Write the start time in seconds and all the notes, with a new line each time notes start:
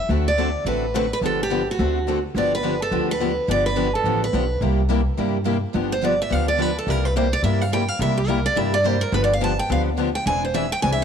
0.09 D2 D3 A3 C4 F#4 A4
0.28 D5
0.38 D3 A3 C4 F#4 A4
0.65 A1 D3 A3 C4 F#4 A4 B4
0.95 D3 A3 C4 F#4 A4 B4
1.13 B4
1.21 G1 D3 F3 B3 D4 G4
1.26 A4
1.43 G4
1.51 D3 F3 B3 D4 G4
1.71 F#4
1.79 D2 D3 A3 C4 F#4 A4
2.08 D3 A3 C4 F#4 A4
2.34 G1 D3 F3 B3 D4 G4 D5
2.55 B4
2.63 D3 F3 B3 D4 G4
2.82 A4
2.91 D2 D3 F3 B3 D4 G4
3.11 B4
3.20 D3 F3 B3 D4 G4
3.47 G1 D3 F3 B3 D4 G4 D5
3.66 B4
3.76 D3 F3 B3 D4 G4
3.95 A4
4.04 A1 D3 F3 B3 D4 G4
4.24 B4
4.33 B1 D3 F3 B3 D4 G4
4.61 C2 C3 G3 A#3 E4 G4
4.89 C3 G3 A#3 E4 G4
5.17 G2 C3 G3 A#3 E4 G4
5.44 C3 G3 A#3 E4 G4
5.73 G1 D3 F3 B3 D4 G4
5.92 C5
6.01 D3 F3 B3 D4 G4 D5
6.22 E5
6.30 D2 D3 F3 B3 D4 G4 F5
6.48 D5
6.57 D3 F3 B3 D4 G4
6.62 B4
6.79 A4
6.87 C2 C3 G3 A#3 E4 G4 A#4
7.05 B4
7.16 C3 G3 A#3 E4 G4 C5
7.33 D5
7.43 G2 C3 G3 A#3 E4 G4 E5
7.61 F5
7.73 C3 G3 A#3 E4 G4 G5
7.88 F5
7.99 C2 C3 G3 A#3 E4 G4 E5
8.18 G4
8.28 C3 G3 A#3 E4 G4 A#4
8.46 D5
8.56 G2 C3 G3 A#3 E4 G4 E5
8.74 D5
8.84 C3 G3 A#3 E4 G4 C5
9.01 A#4
9.12 G1 D3 F3 B3 D4 G4 B4
9.24 D5
9.33 F5
9.41 D3 F3 B3 D4 G4 A5
9.59 G5
9.69 D2 D3 F3 B3 D4 G4 F5
9.97 D3 F3 B3 D4 G4
10.15 G5
10.25 E1 E3 C4 D4 G#4 D5 G#5
10.45 C5
10.54 E3 C4 D4 G#4 D5 E5
10.72 G5
10.82 C2 E3 C4 D4 G#4 D5 G#5
10.92 E5